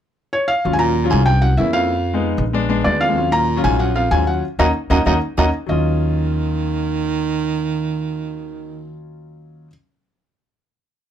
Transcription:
0.33 felt piano C#5
0.48 felt piano F5
0.65 upright bass D#2, grand piano F#3 C#4 F4
0.73 baritone saxophone G#2, felt piano G#5
0.79 baritone saxophone A#2, felt piano A#5
1.04 grand piano F#3 C#4 F4
1.10 upright bass C2, baritone saxophone G#2, felt piano G#5
1.25 baritone saxophone G2, felt piano G5
1.41 baritone saxophone F#2, felt piano F#5
1.57 baritone saxophone E2, upright bass F2, grand piano A#3 C#4 E4, felt piano E5
1.73 baritone saxophone F2, felt piano F5
2.14 grand piano G#3 B3 D#4
2.38 upright bass A#1
2.53 grand piano G#3 B3 D4
2.69 grand piano G#3 B3 D4
2.84 baritone saxophone D2, upright bass D#2, grand piano G#3 B3 D4, felt piano D5
3.00 baritone saxophone F2, felt piano F5
3.08 grand piano G#3 B3 D4
3.17 grand piano F#3 C#4 F4
3.31 baritone saxophone A#2, felt piano A#5
3.56 grand piano F#3 C#4 F4
3.63 upright bass A#1, baritone saxophone G#2, felt piano G#5
3.79 baritone saxophone F#2, felt piano F#5
3.95 baritone saxophone F2, felt piano F5
4.11 upright bass D#2, baritone saxophone G#2, grand piano F#3 C#4 F4, felt piano G#5
4.27 baritone saxophone F#2, felt piano F#5
4.59 upright bass D#2, baritone saxophone F#2, grand piano A#3 C#4 D#4, felt piano D#5 F#5 A#5
4.90 upright bass D#2, baritone saxophone F#2, grand piano A#3 C#4 D#4, felt piano D#5 F#5 A#5
5.06 upright bass D#2, baritone saxophone F#2, grand piano A#3 C#4 D#4, felt piano D#5 F#5 A#5
5.38 upright bass D#2, baritone saxophone F#2, grand piano A#3 C#4 D#4, felt piano D#5 F#5 A#5
5.66 upright bass D#2, baritone saxophone D#3, grand piano F#3 C#4, felt piano D#5
5.71 grand piano F4

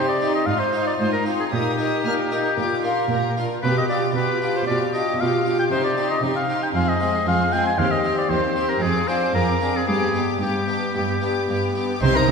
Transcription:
Already playing: harpsichord C3, cello section C3, viola section D#4, violin section G4 C6
0.09 oboe D5
0.20 harpsichord C4 D#4 G4, viola section D#4, violin section G4 C6
0.35 oboe D#5
0.46 cello section G#2, harpsichord G#2, viola section D#4, violin section F4 C6, oboe F5
0.59 oboe C5
0.72 harpsichord C4 D#4 F4, viola section D#4, violin section F4 C6
0.87 oboe D5
0.98 cello section G#2, harpsichord G#2, viola section D#4, violin section F4 C6, oboe C5
1.13 oboe A#4
1.25 harpsichord C4 D#4 F4, viola section D#4, violin section F4 C6
1.40 oboe G#4
1.51 cello section A#2, harpsichord A#2, viola section D#4, oboe G4, violin section A#4 D#6
1.78 harpsichord A#3 D#4 G4, viola section D#4, violin section A#4 D#6
2.04 harpsichord A#2, cello section A#2, viola section D#4, violin section A#4 F6
2.31 harpsichord A#3 D#4 G4, viola section D#4, violin section A#4 D#6
2.57 cello section A#2, harpsichord A#2, viola section F4, violin section A#4 D6
2.84 harpsichord A#3 D4 F4, viola section F4, violin section A#4 C6
3.10 harpsichord A#2, cello section A#2, viola section F4, violin section A#4 A#5
3.37 harpsichord A#3 D4 F4, viola section F4, violin section A#4 C6
3.62 cello section B2, harpsichord B2, viola section F4, violin section G4 D6, oboe B4
3.78 oboe D#5
3.89 harpsichord D4 F4, viola section F4, violin section G4 D6, oboe D5
4.15 harpsichord B2, cello section B2, viola section F4, violin section G4 D6, oboe B4
4.41 harpsichord D4 F4, viola section F4, violin section G4 D6
4.56 oboe C5
4.67 cello section B2, harpsichord B2, viola section F4, violin section G4 D6, oboe D5
4.93 harpsichord D4 F4, viola section F4, violin section G4 D6, oboe D#5
5.19 cello section B2, harpsichord B2, viola section F4, violin section G4 D6, oboe F5
5.45 harpsichord D4 F4, viola section F4, violin section G4 D6
5.59 oboe G5
5.71 harpsichord C3, cello section C3, viola section D#4, violin section G4 C6, oboe C5
5.84 oboe D5
5.97 harpsichord C4 G4, viola section D#4, violin section G4 C6
6.10 oboe D#5
6.23 harpsichord C3, cello section C3, viola section D#4, violin section G4 C6
6.36 oboe F5
6.49 harpsichord C4 G4, viola section D#4, violin section G4 C6
6.63 oboe G5
6.74 harpsichord F2, cello section F2, viola section C4, violin section G#4 C6, oboe F5
6.89 oboe D#5
7.00 harpsichord G#3 C4 F4, viola section C4, violin section G#4 C6
7.26 harpsichord F2, cello section F2, viola section C4, violin section G#4 C6, oboe F5
7.52 harpsichord G#3 C4 F4, viola section C4, violin section G#4 C6, oboe G5
7.66 oboe G#5
7.77 harpsichord D#2, cello section D#2, viola section C4, violin section G4 C6, oboe F5
7.91 oboe D#5
8.04 viola section C4, harpsichord C4 G4, violin section G4 C6
8.18 oboe D5
8.29 cello section D#2, harpsichord D#2, viola section C4, violin section G4 C6, oboe C5
8.55 viola section C4, harpsichord C4 G4, violin section G4 C6
8.69 oboe A#4
8.81 harpsichord F2, cello section F2, viola section C4, violin section G#4 D6, oboe G#4
9.07 harpsichord C4 D4 F4, viola section C4, violin section G#4 D6, oboe C5
9.33 harpsichord F2, cello section F2, viola section C4, violin section G#4 D6, oboe A#4
9.60 harpsichord C4 D4 F4, viola section C4, violin section G#4 D6
9.76 oboe G#4
9.87 harpsichord G2, cello section G2, viola section B3, violin section G4 D6, oboe G#4
10.14 harpsichord B3 D4, viola section B3, violin section G4 D6
10.41 harpsichord G2, cello section G2, viola section B3, violin section G4 D6, oboe G4
10.68 harpsichord B3 D4, viola section B3, violin section G4 D6
10.94 cello section G2, harpsichord G2, viola section B3, violin section G4 D6
11.22 harpsichord B3 D4, viola section B3, violin section G4 D6
11.48 harpsichord G2, cello section G2, viola section B3, violin section G4 D6
11.75 harpsichord B3 D4, viola section B3, violin section G4 D6
11.99 double bass section C2, cello section C3, harpsichord C3 C4 D#4, viola section C4, violin section G4 C6, oboe C5
12.15 viola section D#4, oboe A#4, violin section C5 A#5
12.27 double bass section C2, cello section C3, harpsichord C3, violin section G4

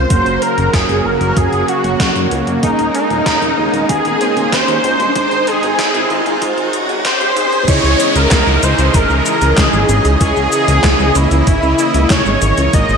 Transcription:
Already playing: supersaw synth C#3, riser
0.10 analog synth bass F#1, analog polysynth F#3 A#3 C#4 F#4 A#4, supersaw synth F#3 A#3 F#4, string machine C5, analog synth lead C5, kick, closed hi-hat
0.26 analog synth bass F#1, closed hi-hat
0.42 analog synth lead A#4, string machine A#4, closed hi-hat
0.58 analog synth bass F#1, closed hi-hat
0.73 analog synth bass F#1, analog synth lead G#4, string machine G#4, kick, snare, closed hi-hat
0.89 analog synth bass F#1, closed hi-hat
1.05 analog synth bass F#1, string machine A#4, analog synth lead A#4
1.21 analog synth bass F#1, closed hi-hat
1.37 analog synth bass F#2, string machine G#4, analog synth lead G#4, kick, closed hi-hat
1.52 analog synth bass F#1, closed hi-hat
1.68 analog polysynth F#3 A#3 C#4 F#4 C#5, string machine F#4, analog synth lead F#4, closed hi-hat
1.84 analog synth bass F#1, closed hi-hat
2.00 analog synth bass F#2, kick, snare, closed hi-hat
2.16 analog synth bass F#2, closed hi-hat
2.31 analog synth bass C#2, closed hi-hat
2.47 analog synth bass F#1, closed hi-hat
2.63 analog synth bass D#1, analog polysynth A#3 C#4 D#4 G#4 A#4, string machine D#4, analog synth lead D#4, kick, closed hi-hat
2.79 analog synth bass D#1, closed hi-hat
2.95 string machine D#4, analog synth lead D#4, closed hi-hat
3.10 analog synth bass D#1, closed hi-hat
3.26 analog synth bass D#1, kick, snare, closed hi-hat
3.42 analog synth bass D#1, closed hi-hat
3.58 analog synth bass D#1
3.73 analog synth bass D#1, closed hi-hat
3.89 analog synth bass D#2, analog synth lead G#4, string machine G#4, kick, closed hi-hat
4.05 analog synth bass D#1, closed hi-hat
4.21 analog polysynth A#3 C#4 D#4 G#4 C5, closed hi-hat
4.37 analog synth bass D#1, closed hi-hat
4.52 analog synth bass D#2, string machine C5, analog synth lead C5, kick, snare, closed hi-hat
4.68 analog synth bass D#2, closed hi-hat
4.84 analog synth bass C#2, closed hi-hat
5.00 analog synth bass D#1, closed hi-hat
5.15 analog synth bass G#1, supersaw synth C3 D#3, analog polysynth G#3 C4 D#4 G#4 C5, string machine C5, analog synth lead C5, kick, closed hi-hat
5.31 analog synth bass G#1, closed hi-hat
5.47 string machine G#4, analog synth lead G#4, closed hi-hat
5.63 analog synth bass G#1, closed hi-hat
5.79 analog synth bass G#1, kick, snare, closed hi-hat
5.94 analog synth bass G#1, closed hi-hat
6.10 analog synth bass G#1, closed hi-hat
6.26 analog synth bass G#1, closed hi-hat
6.42 analog synth bass G#2, kick, closed hi-hat, swell
6.58 analog synth bass G#1, closed hi-hat
6.73 closed hi-hat
6.89 analog synth bass G#1, closed hi-hat
7.05 analog synth bass G#1, analog synth lead C5, kick, snare, closed hi-hat
7.21 analog synth bass G#2, closed hi-hat
7.37 analog synth bass G#2, analog polysynth G#3 C4 D#4 G#4 C5, closed hi-hat
7.52 analog synth bass G#1, closed hi-hat
7.68 analog synth bass C#2, supersaw synth C#3 E3 G#3, analog polysynth C#4 D#4 E4 G#4 D#5, string machine C#5, analog synth lead C#5, kick, closed hi-hat, crash, downlifter, cabasa
7.84 analog synth bass C#2, cabasa
8.00 closed hi-hat, cabasa
8.15 analog synth bass C#2, string machine A#4, analog synth lead A#4, closed hi-hat, cabasa
8.31 analog synth bass C#2, kick, snare, clap, closed hi-hat, cabasa
8.47 analog synth bass C#2, cabasa
8.63 analog synth bass C#2, string machine C5, analog synth lead C5, closed hi-hat, cabasa
8.79 analog synth bass C#2, closed hi-hat, cabasa
8.94 analog synth bass G#1, string machine A#4, analog synth lead A#4, kick, closed hi-hat, cabasa
9.10 analog synth bass C#2, cabasa
9.26 analog polysynth C#4 D#4 E4 G#4 D#5, closed hi-hat, cabasa
9.42 analog synth bass C#2, closed hi-hat, cabasa
9.57 analog synth bass C#2, string machine G#4, analog synth lead G#4, kick, snare, clap, closed hi-hat, cabasa
9.73 analog synth bass G#1, cabasa
9.89 analog synth bass G#1, closed hi-hat, cabasa
10.05 analog synth bass C#2, closed hi-hat, cabasa
10.21 analog synth bass C#2, supersaw synth A#3, analog polysynth C#4 E4 G#4 C#5 D#5, string machine G#4, analog synth lead G#4, kick, closed hi-hat, cabasa
10.37 analog synth bass C#2, cabasa
10.52 string machine G#4, analog synth lead G#4, closed hi-hat, cabasa
10.68 analog synth bass C#2, closed hi-hat, cabasa
10.84 analog synth bass C#2, kick, snare, clap, closed hi-hat, cabasa
11.00 analog synth bass C#2, cabasa
11.15 analog synth bass C#2, string machine E4, analog synth lead E4, closed hi-hat, cabasa
11.31 analog synth bass C#2, closed hi-hat, cabasa
11.47 analog synth bass G#1, analog synth lead E4, string machine E4, kick, closed hi-hat, cabasa
11.63 analog synth bass C#2, cabasa
11.79 analog polysynth C#4 E4 G#4 D#5, closed hi-hat, cabasa
11.94 analog synth bass C#2, closed hi-hat, cabasa
12.10 analog synth bass C#2, string machine C#5, analog synth lead C#5, kick, snare, clap, closed hi-hat, cabasa
12.26 analog synth bass G#1, cabasa
12.42 analog synth bass G#1, closed hi-hat, cabasa
12.58 analog synth bass C#2, closed hi-hat, cabasa
12.73 analog synth bass G#1, analog polysynth G#3 A#3 D#4 G#4 A#4, supersaw synth G#3, string machine D#5, analog synth lead D#5, kick, closed hi-hat, cabasa
12.89 analog synth bass G#1, cabasa

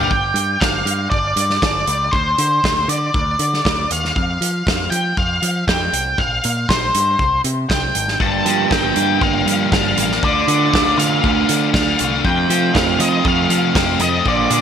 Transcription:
Already playing: overdriven electric guitar A#3 D4 G4
0.03 lead electric guitar F5
0.11 picked electric bass G1, lead electric guitar G5, kick
0.34 picked electric bass G2, closed hi-hat
0.60 picked electric bass G1, lead electric guitar F5, kick, snare
0.85 picked electric bass G2, closed hi-hat
1.10 picked electric bass G1, lead electric guitar D5, kick
1.36 picked electric bass G2, closed hi-hat
1.50 snare
1.62 picked electric bass G1, lead electric guitar D5, kick, snare
1.87 picked electric bass C#2, closed hi-hat
2.11 picked electric bass D2, lead electric guitar C5, kick
2.38 picked electric bass D3, closed hi-hat
2.64 picked electric bass D2, kick, snare
2.88 picked electric bass D3, lead electric guitar D5, closed hi-hat
3.14 picked electric bass D2, kick
3.39 picked electric bass D3, closed hi-hat
3.54 snare
3.65 picked electric bass D2, kick, snare
3.91 picked electric bass D#2, lead electric guitar F5, closed hi-hat
4.05 snare
4.16 picked electric bass F2, kick
4.41 picked electric bass F3, closed hi-hat
4.67 picked electric bass F2, kick, snare
4.90 picked electric bass F3, lead electric guitar G5, closed hi-hat
5.17 picked electric bass F2, lead electric guitar F5, kick
5.42 picked electric bass F3, closed hi-hat
5.67 picked electric bass F2, lead electric guitar G5, kick, snare
5.93 picked electric bass C2, closed hi-hat
6.18 picked electric bass A#1, lead electric guitar F5, kick
6.44 picked electric bass A#2, closed hi-hat
6.69 picked electric bass A#1, lead electric guitar C5, kick, snare
6.95 picked electric bass G2, closed hi-hat
7.19 picked electric bass C2, kick
7.44 picked electric bass C3, closed hi-hat
7.69 picked electric bass C2, lead electric guitar G5, kick, snare
7.95 picked electric bass G#1, closed hi-hat
8.08 snare
8.20 picked electric bass G1, overdriven electric guitar G2 D3 G3 A#3 D4 G4, lead electric guitar A5, kick
8.45 picked electric bass G2, overdriven electric guitar F3, closed hi-hat
8.71 picked electric bass G1, overdriven electric guitar A#3, lead electric guitar G5, kick, snare
8.96 picked electric bass G2, overdriven electric guitar G4, closed hi-hat
9.21 picked electric bass G1, overdriven electric guitar A#3, lead electric guitar F5, kick
9.46 picked electric bass G2, overdriven electric guitar F3, closed hi-hat
9.72 picked electric bass G1, overdriven electric guitar D4, lead electric guitar F5, kick, snare
9.97 picked electric bass A1, overdriven electric guitar A#3, closed hi-hat
10.12 snare
10.22 picked electric bass D2, overdriven electric guitar D3 A3 D4 F4, lead electric guitar D5, kick
10.48 picked electric bass D3, overdriven electric guitar D3, closed hi-hat
10.74 picked electric bass D2, overdriven electric guitar A3, kick, snare
10.98 picked electric bass D3, overdriven electric guitar F4, lead electric guitar F5, closed hi-hat
11.24 picked electric bass D2, overdriven electric guitar A3, kick
11.49 overdriven electric guitar D3, picked electric bass D3, closed hi-hat
11.74 picked electric bass D2, overdriven electric guitar D4, lead electric guitar F5, kick, snare
11.99 picked electric bass C2, overdriven electric guitar A3, closed hi-hat
12.24 overdriven electric guitar F2 C3 F3 A3 C4 F4, picked electric bass F2, lead electric guitar G5, kick
12.49 overdriven electric guitar F3, picked electric bass F3, closed hi-hat
12.74 picked electric bass F2, overdriven electric guitar A3, lead electric guitar F5, kick, snare
12.99 picked electric bass F3, overdriven electric guitar F4, lead electric guitar D#5, closed hi-hat
13.25 picked electric bass F2, overdriven electric guitar A3, lead electric guitar F5, kick
13.49 picked electric bass F3, overdriven electric guitar F3, closed hi-hat
13.75 picked electric bass F2, overdriven electric guitar C4, kick, snare
14.00 picked electric bass F2, overdriven electric guitar A3, lead electric guitar D#5, closed hi-hat
14.23 picked electric bass A#1, overdriven electric guitar A#2 D3 A#3 D4 F4, kick
14.28 lead electric guitar D5
14.51 picked electric bass A#2, overdriven electric guitar D3, closed hi-hat

